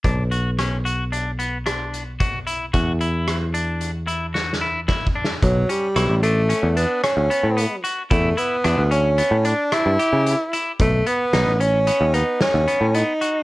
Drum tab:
HH |x--x--x--x--x--x--x--x--x--x--|x--x--x--x--x--x--------------|x--x--x--x--x--x--x--x--x--x--|x--x--x--x--x--x--x--x--x--x--|
SD |------r-----------r-----------|------r-----------o-o---o---o-|------r-----------r-----------|------r-----------r-----------|
BD |o-----------------------o-----|o-----------------------o-o---|o-----------------------------|o-----------------------------|

HH |x--x--x--x--x--x--x--x--x--x--|
SD |------o-----------o-----------|
BD |o-----------------------------|